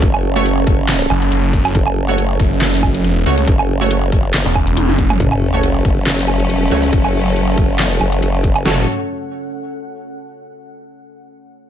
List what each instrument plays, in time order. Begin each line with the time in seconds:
Already playing: ambient pad C#4 A4 A5
0.02 wobble bass F#1, kick, closed hi-hat
0.14 low woodblock
0.35 synth stab A3 F#4 C#5
0.45 closed hi-hat
0.67 wobble bass F#1, kick, closed hi-hat
0.89 snare, clap, closed hi-hat
1.10 detuned saw bass F#1, low woodblock
1.22 closed hi-hat
1.32 detuned saw bass F#1, closed hi-hat
1.53 kick, closed hi-hat
1.65 closed hi-hat, low woodblock
1.75 wobble bass F#1, kick, closed hi-hat
1.87 low woodblock
2.08 synth stab A3 F#4 C#5
2.18 closed hi-hat
2.40 detuned saw bass F#1, kick, closed hi-hat
2.61 snare, clap, closed hi-hat
2.83 kick, low woodblock
2.95 closed hi-hat
3.00 detuned saw bass F1
3.04 closed hi-hat
3.26 detuned saw bass C#2, synth stab A3 F#4 C#5, closed hi-hat
3.38 closed hi-hat
3.48 wobble bass F#1, kick, closed hi-hat
3.59 low woodblock
3.81 synth stab A3 F#4 C#5
3.91 closed hi-hat
4.12 wobble bass F#1, kick, closed hi-hat
4.34 wobble bass F#1, snare, clap, closed hi-hat
4.46 detuned saw bass E1
4.55 kick, low woodblock
4.67 closed hi-hat
4.77 closed hi-hat, high tom
4.89 detuned saw bass F#1, high tom
4.99 kick, closed hi-hat
5.10 closed hi-hat, mid tom, low woodblock
5.20 wobble bass F#1, string section F#3 A3 C#4, ambient pad C#4, kick, closed hi-hat, sub drop
5.32 low woodblock
5.53 synth stab A3 F#4 C#5, ambient pad A4
5.63 closed hi-hat
5.85 wobble bass F#1, kick, closed hi-hat
5.95 ambient pad F#5
6.07 snare, clap, closed hi-hat
6.28 low woodblock
6.40 closed hi-hat
6.45 wobble bass F1
6.50 closed hi-hat
6.71 wobble bass C#2, synth stab A3 F#4 C#5, closed hi-hat
6.83 closed hi-hat
6.93 wobble bass F#1, kick, closed hi-hat
7.05 low woodblock
7.36 closed hi-hat
7.58 wobble bass F#1, kick, closed hi-hat
7.79 snare, clap, closed hi-hat
8.01 wobble bass F#1, low woodblock
8.12 closed hi-hat
8.22 wobble bass F#1, closed hi-hat
8.44 kick, closed hi-hat
8.56 closed hi-hat, low woodblock
8.65 wobble bass F#1, string section F#3 F#4 A4 C#5, synth stab A3 F#4 C#5, ambient pad C#4, snare, floor tom, open hi-hat
8.73 ambient pad A4
8.79 ambient pad F#5